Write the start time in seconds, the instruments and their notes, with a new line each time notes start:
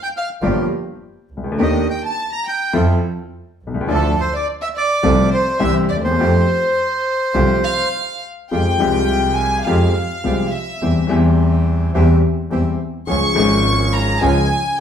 0.02 violin section G5, bandoneon G5
0.17 bandoneon F5, violin section F5
0.41 double bass G1, upright piano G1 G2 F3 A#3 D4 G4, bandoneon A#3 F4 G4
1.30 double bass C#2
1.37 upright piano C2
1.44 upright piano C#2
1.52 upright piano D2
1.57 double bass D#2, upright piano D#2 D#3 A#3 D4 G4, bandoneon D4 D#4 G4
1.62 bandoneon D#5, violin section D#5
1.90 bandoneon G5, violin section G5
2.04 violin section A5, bandoneon A5
2.32 bandoneon A#5, violin section A#5
2.47 violin section G5, bandoneon G5
2.73 upright piano F2 F3 C4 E4 A4, double bass F2, bandoneon E4 F4 A4
3.61 double bass C2
3.67 upright piano B1
3.74 upright piano C2
3.81 upright piano C#2
3.88 upright piano D2 D3 F3 D4 E4 A4, double bass D2, bandoneon D4 E4 F4, violin section A4
3.94 bandoneon A4
4.19 violin section C5, bandoneon C5
4.34 violin section D5, bandoneon D5
4.62 violin section E5, bandoneon E5
4.76 violin section D5, bandoneon D5
5.03 upright piano C2 C3 F3 A3 C4 A4, double bass C2, bandoneon C4 F4 A4
5.32 violin section C5, bandoneon C5
5.59 upright piano C2 C3 E3 G3 C4 G4, double bass C2, bandoneon C4 E4 G4, violin section E5
5.64 bandoneon E5
5.89 double bass D#2, violin section D5, bandoneon D5
5.96 upright piano D2
6.02 upright piano D#2, violin section C5, bandoneon C5
6.11 upright piano E2
6.18 double bass F2, upright piano F2 F3 A3 C4 G4, bandoneon A3 F4 G4
7.34 upright piano C2 C3 F3 A3 C4 G4, double bass C2, bandoneon A3 F4 G4
7.64 violin section F5
8.51 double bass F2, upright piano F2 F3 G#3 C4 G4, bandoneon G#3 F4 G4, violin section G5
8.78 upright piano C2 C3 F3 G#3 C4, double bass C2, bandoneon G#3 F4 G4
8.82 upright piano G4
9.34 violin section G#5
9.63 upright piano F2 F3 G#3 C4, bandoneon G#3 F4, violin section F5
9.67 double bass F2, upright piano G4, bandoneon G4
10.24 upright piano C2 C3 F3 G#3 C4 G4, double bass C2, bandoneon G#3 F4 G4
10.49 violin section E5
10.81 double bass E2, upright piano E2 E3 G3 C4 G4, bandoneon C4 E4 G4
11.07 upright piano E2 E3 G3 C4 G4, double bass E2, bandoneon C4 E4 G4
11.94 double bass E2, upright piano E2 E3 G3 C4 G4, bandoneon C4 E4 G4
12.50 upright piano E2 E3 G3 C4 G4, double bass E2, bandoneon C4 E4 G4
13.07 upright piano C#2 C#3 F3 G#3 C#4 G#4, double bass C#2, bandoneon C#4 F4 G#4, violin section C#6
13.34 upright piano G#1 G#2 F3 G#3 C#4, double bass G#1, bandoneon C#4 F4 G#4
13.38 upright piano G#4
13.93 violin section A#5
14.20 upright piano C#2 C#3 F3 G#3 C#4 G#4, double bass C#2, bandoneon C#4 F4 G#4, violin section G#5